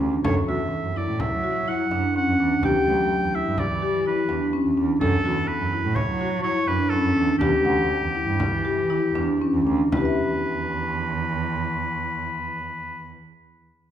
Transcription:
0.01 D2 D4
0.24 F#2 A4 C#5, frame drum
0.48 E2 F#4 E5
0.72 frame drum
0.84 F#2
0.96 E4 D5
1.08 A2
1.20 E5, frame drum
1.32 F#3
1.44 F#4
1.68 E4 F#5
1.91 F#2 D4, frame drum
2.15 C#4 F#5, frame drum
2.27 F#2
2.39 E2 D4
2.63 E2 G4 G5, frame drum
2.87 D2 F#3
3.10 frame drum
3.22 E2
3.34 E4 E5
3.46 G2
3.58 D5, frame drum
3.70 E3
3.82 G4
4.06 E4 B4
4.29 E2 D4, frame drum
4.53 C#4, frame drum
4.65 E2
4.77 E2 D4
5.01 F#2 A4, frame drum
5.25 E2 F#4
5.48 B4, frame drum
5.61 F#2
5.73 E4
5.85 A2
5.95 C#5, frame drum
6.09 F#3
6.21 F#4
6.43 E4 C#5
6.67 F#2 D4 B4, frame drum
6.90 C#4 A4, frame drum
7.04 F#2
7.17 E2 D4
7.39 E2 G4, frame drum
7.65 D2 F#5
7.90 frame drum
8.02 E2
8.14 E4, frame drum
8.26 G2
8.40 frame drum
8.52 E3
8.65 G4, frame drum
8.90 E4
9.15 E2 D4, frame drum
9.42 C#4
9.54 E2
9.66 D2 D4
9.92 E2 E4 B4, frame drum
9.97 G4
10.01 B4 E5

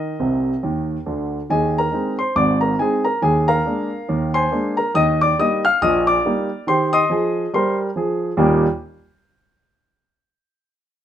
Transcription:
Already playing: D#3 A#4 D#5
0.20 C2 C3
0.63 D#2 D#3
1.06 D2 D3
1.50 D#2 D#3 G#4 D#5 G#5
1.78 A#4 A#5
1.92 G#3 C4 D#4
2.19 C5 C6
2.36 G#1 G#2 D5 D6
2.61 A#4 A#5
2.79 G#3 C4 D#4 G#4 G#5
3.05 A#4 A#5
3.22 D#2 D#3 G#4 G#5
3.48 A#4 F5 A#5
3.65 G#3 A#3 D4
4.09 D#2 D#3
4.34 C5 G#5 C6
4.51 G#3 A#3 D4
4.77 A#4 A#5
4.94 D#2 D#3 D#5 D#6
5.21 D5 D6
5.39 G3 A#3 D#4 D#5 D#6
5.65 F5 F6
5.82 A#1 A#2 D#5 D#6
6.07 D5 D6
6.25 G3 A#3 D#4
6.67 D#3 G4 C5 C6
6.93 D#5 C6 D#6
7.09 F3 G#4
7.54 G3 A#4 C5 C6
7.96 F3 G#4
8.37 D#2 A#2 G3 A#3 D#4 G4 G5

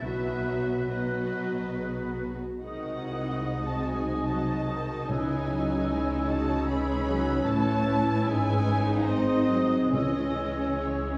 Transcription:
0.03 B1 B2 F#3 B3 F#4 B4 E5 F#6
0.89 F#3 B3 F#4 B4 D#5 F#6
1.34 F#4
1.78 G#4
2.20 F#4
2.61 C2 C3 D#3 G#3 D#4 F#4 G#4 D#5 F#5 D#6
3.05 E4
3.45 G#3 D#4
3.66 A5
3.86 G#5
4.26 F#3 D#4 D#5 A5
4.67 D#3
5.08 C#2 C#3 E3 C#4 E4 C#5 G#5 E6
5.50 F#3
5.89 G#3 E4
6.28 F#4 A5
6.68 G#3 G#4 C#5 B5
7.07 F#3
7.45 A1 A2 E3 C#4 E4 A4 C#5 A5
7.85 E4
8.25 G#1 G#2 G#3 D#4 G#4 B4 G#5
9.06 D#3 G#3 C4 C5 D#5 D#6
9.49 F#3
9.91 C#2 C#3 E3 G#3 C#4 G#4 C#5 D#5 E6
10.83 G#4 C#5

